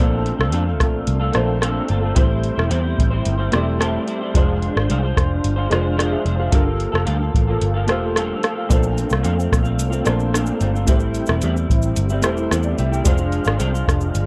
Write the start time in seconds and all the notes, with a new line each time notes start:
Already playing: A#3 D4
0.00 A#1 A#2 D3 A3 C4 F4 A4 C5
0.26 closed hi-hat
0.39 C2 A3 C4 F4 A4, cross-stick
0.52 F2 A#2 D3 A3 C4 F4 A4, closed hi-hat
0.65 A3 C4 F4 A4
0.80 A#1, kick, cross-stick, closed hi-hat
1.07 C2, closed hi-hat
1.20 A3 C4 F4 A4
1.32 A#1 A3 A#3 C4 D4 F4 A4 C5, cross-stick, closed hi-hat
1.61 A#2 D3 A3 C4 F4 A4, cross-stick, closed hi-hat
1.88 G1 A3 C4 F4 A4, closed hi-hat
2.00 A3 C4 F4 A4
2.14 A1 A2 E3 G3 A3 C4 E4 G4 C5, kick, closed hi-hat
2.29 G3 C4 E4 C5
2.44 closed hi-hat
2.55 E1 G3 C4 E4 C5, cross-stick
2.70 E2 A2 E3 G3 C4 E4 C5, closed hi-hat
2.83 G3 C4 E4 C5
2.99 A1, kick, closed hi-hat
3.10 G3 C4 E4 C5
3.25 G1, closed hi-hat
3.38 G3 C4 E4 C5
3.52 E1 G3 A3 C4 E4 G4 C5 D5 E5, cross-stick, closed hi-hat
3.79 A2 E3 G3 C4 E4 C5 A5, cross-stick, closed hi-hat
4.06 G3 C4 E4 C5, closed hi-hat
4.21 G3 C4 E4 C5
4.34 F1 F3 G#3 D4 F4 C5, kick, closed hi-hat
4.62 closed hi-hat
4.75 G#1 D4 F4 C5, cross-stick
4.89 C2 F3 G#3 D4 F4 C5, closed hi-hat
5.02 D4 F4 C5
5.17 F1, kick, cross-stick, closed hi-hat
5.44 G1, closed hi-hat
5.56 D4 F4 C5
5.70 F1 G#3 D4 F4 C5, cross-stick, closed hi-hat
5.97 F3 G#3 D4 F4 C5 D5, cross-stick, closed hi-hat
6.12 G#4 E5
6.24 F1 G#3 D4 F4 C5, closed hi-hat
6.37 D4 F4 G#4 C5 F5
6.52 G1 G2 D3 F3 A#3 F4 G4 A4 A#4, kick, closed hi-hat
6.65 F3 A#3 F4 A4
6.80 closed hi-hat
6.92 F1 F3 A#3 F4 A4, cross-stick
7.05 D2 G2 D3 F3 A#3 F4 A4, closed hi-hat
7.19 F3 A#3 F4 A4
7.34 A1, kick, closed hi-hat
7.47 F3 A#3 F4 A4
7.61 G1, closed hi-hat
7.74 F3 A#3 F4 A4
7.87 E1 F3 A3 A#3 F4 G4 C5, cross-stick, closed hi-hat
7.91 A4
8.15 G2 D3 F3 A#3 F4 A4, cross-stick, closed hi-hat
8.42 F3 A#3 F4 A4, cross-stick, closed hi-hat
8.55 F3 A#3 F4 A4
8.68 A#1 A#2 D3 A3 A#3 C4 D4 F4 A4 C5, kick, closed hi-hat, shaker
8.83 shaker
8.98 closed hi-hat, shaker
9.10 C2 A3 C4 F4, cross-stick, shaker
9.23 F2 A#2 D3 A3 C4 F4, closed hi-hat, shaker
9.37 A3 C4 F4, shaker
9.52 A#1, kick, cross-stick, closed hi-hat, shaker
9.63 A3 C4 F4, shaker
9.79 C2, closed hi-hat, shaker
9.90 A3 C4 F4, shaker
10.04 A#1 D3 A3 A#3 C4 D4 F4 A4 C5, cross-stick, closed hi-hat, shaker
10.20 shaker
10.33 A#2 D3 A3 C4 F4, cross-stick, closed hi-hat, shaker
10.46 shaker
10.60 G1 D3 A3 C4 F4, closed hi-hat, shaker
10.73 A3 C4 F4, shaker
10.87 A1 A2 E3 G3 A3 C4 E4 G4 C5, kick, closed hi-hat, shaker
11.00 C4 E4, shaker
11.04 G3
11.15 closed hi-hat, shaker
11.26 E1 G3 C4 E4, cross-stick, shaker
11.42 E2 A2 E3 G3 C4 E4, closed hi-hat, shaker
11.56 G3 C4 E4, shaker
11.70 A1, kick, closed hi-hat, shaker
11.82 shaker
11.96 G1, closed hi-hat, shaker
12.09 G3 C4 E4, shaker
12.22 E1 E3 G3 A3 C4 E4 G4 C5, cross-stick, closed hi-hat, shaker
12.26 E4
12.37 shaker
12.50 E2 A2 E3 G3 C4 E4 C5, cross-stick, closed hi-hat, shaker
12.63 D5, shaker
12.77 C2 E3 G3 C4 E4 G4 E5, closed hi-hat, shaker
12.91 G3 C4 E4 G5, shaker
13.04 F1 F2 C3 F3 G#3 D4 F4 C5, kick, closed hi-hat, shaker
13.18 F3 G#3 D4 F4, shaker
13.32 closed hi-hat, shaker
13.45 G#1 F3 G#3 D4 F4, cross-stick, shaker
13.58 C2 F2 C3 F3 G#3 D4 F4, closed hi-hat, shaker
13.72 F3 G#3 D4 F4, shaker
13.88 F1, kick, cross-stick, closed hi-hat, shaker
14.01 shaker
14.15 G1, closed hi-hat, shaker